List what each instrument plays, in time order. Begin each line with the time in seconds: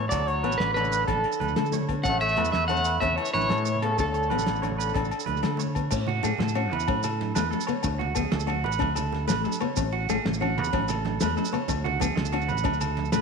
0.08 trombone F#3, clean electric guitar D5, closed hi-hat, low agogo, maracas
0.12 fingered electric bass D2, clean electric guitar A4, muted steel-string acoustic guitar stroke, kick, high conga
0.20 low conga
0.25 trombone F#3, clean electric guitar C#5, closed hi-hat
0.43 fingered electric bass A1, steel-string acoustic guitar B3, clean electric guitar B4, closed hi-hat, high conga, low agogo
0.52 low conga, maracas
0.58 fingered electric bass A1, trombone D3, clean electric guitar B4, snare, closed hi-hat
0.74 trombone D3, steel-string acoustic guitar D4, clean electric guitar B4 C#5, closed hi-hat, high conga, low agogo, maracas
0.84 low conga, maracas
0.92 clean electric guitar B4, closed hi-hat, maracas
1.07 fingered electric bass A1, trombone D3, steel-string acoustic guitar D4, clean electric guitar A4, kick, closed hi-hat, high conga, low agogo
1.15 low conga
1.23 closed hi-hat, low conga, low agogo
1.32 maracas
1.40 fingered electric bass D2, clean electric guitar B4, closed hi-hat, high conga
1.48 low conga, maracas
1.56 fingered electric bass D3, steel-string acoustic guitar A3, clean electric guitar A4, snare, closed hi-hat, low agogo
1.66 maracas
1.72 clean electric guitar C#5, snare, closed hi-hat, high conga, maracas
1.81 low conga
1.89 steel-string acoustic guitar B3, kick, closed hi-hat, low agogo
1.97 low conga
2.03 fingered electric bass A1, steel-string acoustic guitar C#4, clean electric guitar A4 F#5, kick, closed hi-hat, high conga, low agogo, maracas
2.07 trombone A3
2.12 low conga
2.21 trombone A3, clean electric guitar C#5 E5, closed hi-hat
2.29 maracas
2.37 fingered electric bass E2, steel-string acoustic guitar A3, clean electric guitar B4, closed hi-hat, high conga, low agogo
2.45 low conga, maracas
2.52 fingered electric bass E2, trombone A3, clean electric guitar E5, snare, closed hi-hat
2.68 trombone A3, steel-string acoustic guitar C#4, clean electric guitar C#5 F#5, closed hi-hat, high conga, low agogo, maracas
2.76 low conga, maracas
2.85 clean electric guitar B4, closed hi-hat, maracas
3.00 fingered electric bass E2, trombone A3, steel-string acoustic guitar C#4, clean electric guitar E5, muted clean electric guitar stroke, kick, closed hi-hat, high conga, low agogo
3.11 low conga
3.16 trombone E3, clean electric guitar C#5, closed hi-hat, low agogo
3.25 maracas
3.32 fingered electric bass A1, trombone E3, clean electric guitar B4 C#5, closed hi-hat, high conga
3.41 low conga, maracas
3.49 fingered electric bass A2, steel-string acoustic guitar A3, clean electric guitar A4, snare, closed hi-hat, low agogo
3.57 maracas
3.65 clean electric guitar C#5, closed hi-hat, maracas
3.75 low conga
3.82 trombone C#3, steel-string acoustic guitar B3, clean electric guitar A4, closed hi-hat, low agogo
3.92 low conga
3.98 fingered electric bass D2, trombone D3, steel-string acoustic guitar D4, clean electric guitar A4, kick, closed hi-hat, high conga, low agogo, maracas
4.07 low conga
4.14 clean electric guitar C#5, closed hi-hat, maracas
4.23 low conga, maracas
4.30 fingered electric bass A1, steel-string acoustic guitar B3, clean electric guitar B4, closed hi-hat, high conga, low conga, low agogo
4.38 low conga, maracas
4.47 fingered electric bass A1, snare, closed hi-hat, maracas
4.56 maracas
4.62 steel-string acoustic guitar D4, clean electric guitar C#5, closed hi-hat, high conga, low agogo, maracas
4.70 low conga
4.78 clean electric guitar B4, closed hi-hat, maracas
4.89 maracas
4.94 fingered electric bass A1, steel-string acoustic guitar D4, clean electric guitar A4, kick, closed hi-hat, high conga, low agogo
5.03 low conga, maracas
5.10 closed hi-hat, low conga, low agogo, maracas
5.20 maracas
5.26 fingered electric bass D2, clean electric guitar B4, closed hi-hat, high conga, low conga
5.34 low conga, maracas
5.43 fingered electric bass D3, steel-string acoustic guitar A3, clean electric guitar A4, snare, closed hi-hat, low agogo, maracas
5.50 low conga
5.57 clean electric guitar C#5, closed hi-hat, high conga, maracas
5.67 low conga
5.75 steel-string acoustic guitar B3, kick, closed hi-hat, low agogo, maracas
5.91 fingered electric bass A2, steel-string acoustic guitar C#4, kick, crash, high conga, low agogo, maracas
6.07 clean electric guitar F#4, ride, low conga
6.15 low conga
6.23 fingered electric bass A2, steel-string acoustic guitar A3, clean electric guitar G#4, ride, high conga, low agogo, maracas
6.38 fingered electric bass A2, clean electric guitar A4, snare, ride, low conga
6.48 maracas
6.55 steel-string acoustic guitar C#4, clean electric guitar F#4, ride, high conga, low agogo
6.64 low conga
6.71 fingered electric bass E2, clean electric guitar B4, ride, low conga
6.80 maracas
6.88 fingered electric bass A2, steel-string acoustic guitar C#4, kick, ride, high conga, low agogo
7.03 clean electric guitar A4, ride, low conga, low agogo, maracas
7.21 snare, ride, high conga
7.29 low conga
7.35 fingered electric bass E2, steel-string acoustic guitar A3, clean electric guitar B4, snare, ride, low conga, low agogo, maracas
7.45 low conga
7.51 clean electric guitar A4, ride, high conga, maracas
7.61 maracas
7.67 steel-string acoustic guitar B3, clean electric guitar C#5, ride, low conga, low agogo
7.83 fingered electric bass D2, steel-string acoustic guitar D4, kick, ride, high conga, low agogo, maracas
7.99 clean electric guitar F#4, ride, low conga
8.08 low conga
8.15 fingered electric bass D2, steel-string acoustic guitar B3, clean electric guitar G#4, kick, ride, high conga, low agogo, maracas
8.32 fingered electric bass D2, clean electric guitar A4, snare, ride, low conga
8.40 maracas
8.47 steel-string acoustic guitar D4, clean electric guitar F#4, ride, high conga, low agogo
8.57 low conga
8.64 fingered electric bass A1, clean electric guitar B4, ride, low conga
8.72 low conga, maracas
8.79 fingered electric bass D2, steel-string acoustic guitar D4, kick, ride, high conga, low agogo
8.95 clean electric guitar A4, ride, low conga, low agogo, maracas
9.12 snare, ride, high conga
9.22 low conga
9.28 fingered electric bass A1, steel-string acoustic guitar A3, clean electric guitar B4, snare, ride, low conga, low agogo, maracas
9.38 low conga
9.44 clean electric guitar A4, ride, high conga, maracas
9.52 maracas
9.60 steel-string acoustic guitar B3, clean electric guitar C#5, ride, low conga, low agogo
9.76 fingered electric bass A1, steel-string acoustic guitar C#4, kick, ride, high conga, low agogo, maracas
9.92 clean electric guitar F#4, ride
10.04 low conga
10.09 fingered electric bass A1, steel-string acoustic guitar A3, clean electric guitar G#4, ride, high conga, low agogo, maracas
10.25 fingered electric bass A1, muted clean electric guitar stroke, snare, ride, low conga
10.34 maracas
10.41 steel-string acoustic guitar C#4, clean electric guitar F#4, ride, high conga, low agogo
10.50 low conga
10.58 fingered electric bass E2, clean electric guitar B4, ride, low conga
10.64 maracas
10.73 fingered electric bass A1, steel-string acoustic guitar C#4, kick, ride, high conga, low agogo
10.88 clean electric guitar A4, ride, low conga, low agogo, maracas
11.05 snare, ride, high conga
11.14 low conga
11.20 fingered electric bass E2, steel-string acoustic guitar A3, clean electric guitar B4, snare, ride, low conga, low agogo, maracas
11.31 low conga
11.37 clean electric guitar A4, ride, high conga, maracas
11.45 maracas
11.52 steel-string acoustic guitar B3, clean electric guitar C#5, ride, low conga, low agogo, maracas
11.68 fingered electric bass D2, steel-string acoustic guitar D4, kick, ride, high conga, low conga, low agogo, maracas
11.84 clean electric guitar F#4, ride, low conga
12.00 fingered electric bass D2, steel-string acoustic guitar B3, clean electric guitar G#4, kick, ride, high conga, low agogo, maracas
12.16 fingered electric bass D2, clean electric guitar A4, snare, ride, low conga
12.25 maracas
12.32 steel-string acoustic guitar D4, clean electric guitar F#4, ride, high conga, low agogo
12.40 low conga, maracas
12.48 fingered electric bass A1, clean electric guitar B4, ride, low conga, maracas
12.58 maracas
12.64 fingered electric bass D2, steel-string acoustic guitar D4, kick, ride, high conga, low agogo, maracas
12.73 maracas
12.81 clean electric guitar A4, ride, low conga, low agogo, maracas
12.97 snare, ride, high conga
13.05 maracas
13.12 fingered electric bass A1, steel-string acoustic guitar A3, clean electric guitar B4, snare, ride, low conga, low agogo, maracas